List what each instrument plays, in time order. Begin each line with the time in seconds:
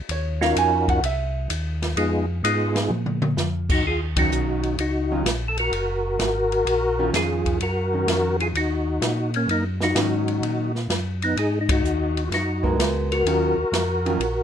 0.09 tonewheel organ D#2, hollow-body jazz guitar C#5, ride
0.41 tonewheel organ C#4 D#4 F4 F#4 A#4, hollow-body jazz guitar F5, snare
0.55 tonewheel organ F2, hollow-body jazz guitar G#5, hi-hat pedal, ride
0.88 hollow-body jazz guitar F#5, kick, ride
1.03 tonewheel organ C2, hollow-body jazz guitar E5, ride
1.49 tonewheel organ D#2, hi-hat pedal, ride
1.82 snare, ride
1.96 tonewheel organ F2 G#3 B3 D#4 F4 G#4, ride
2.43 tonewheel organ G#2 G#3 B3 D#4 F4 G#4, hi-hat pedal, ride
2.76 snare, ride
2.90 tonewheel organ A#2, high tom
3.06 mid tom
3.22 mid tom
3.37 tonewheel organ F2, snare, hi-hat pedal
3.69 tonewheel organ D#4 F#4, kick, crash
3.84 tonewheel organ D#2 F4 G#4
4.16 hollow-body jazz guitar D#3 F#3 C#4, tonewheel organ D#4 F#4, kick, ride
4.31 tonewheel organ B1, hi-hat pedal
4.63 ride
4.78 tonewheel organ C#2 D#4 F#4, ride
5.11 hollow-body jazz guitar D#3 F#3 C#4 F4
5.24 tonewheel organ A#1, snare, hi-hat pedal, ride
5.48 tonewheel organ A4
5.58 tonewheel organ F#4 A#4, ride
5.72 tonewheel organ F#1, ride
6.19 tonewheel organ G#1, snare, hi-hat pedal, ride
6.52 ride
6.65 tonewheel organ A#1, ride
6.99 hollow-body jazz guitar D#3 C#4 F4
7.13 tonewheel organ F2 F4 G#4, snare, hi-hat pedal, ride
7.45 kick, ride
7.60 tonewheel organ F#2 F#4 A#4, ride
7.93 hollow-body jazz guitar D#3 C#4
8.07 tonewheel organ F2, snare, hi-hat pedal, ride
8.40 tonewheel organ F4 G#4, ride
8.54 tonewheel organ D#2 D#4 F#4, ride
9.01 tonewheel organ A#2, snare, hi-hat pedal, ride
9.34 tonewheel organ A#3 C#4, ride
9.48 tonewheel organ F#2 A#3 D#4, ride
9.81 tonewheel organ D#4 F#4, snare
9.95 tonewheel organ G#2, hollow-body jazz guitar D#3 F#3 C#4, snare, hi-hat pedal, ride
10.28 ride
10.42 tonewheel organ A#2, ride
10.75 snare
10.89 tonewheel organ F#2, snare, hi-hat pedal, ride
11.22 tonewheel organ B3 D#4, ride
11.36 tonewheel organ G#2 D#4 G#4, ride
11.61 tonewheel organ D#4
11.69 tonewheel organ D#4 F#4, kick, ride
11.83 tonewheel organ D#2, hi-hat pedal
12.17 ride
12.28 tonewheel organ F#2 F4
12.32 tonewheel organ D#4 F#4, snare, ride
12.63 hollow-body jazz guitar G#3 B3 F#4 A#4, kick
12.77 tonewheel organ C#2, snare, hi-hat pedal, ride
13.12 tonewheel organ F#4 A#4, ride
13.25 tonewheel organ D#2, hollow-body jazz guitar D#3 F#3 C#4 F4, ride
13.57 tonewheel organ D#2
13.72 tonewheel organ F2, snare, hi-hat pedal, ride
14.05 hollow-body jazz guitar D#3 F#3 C#4 F4, ride
14.19 tonewheel organ A#1, ride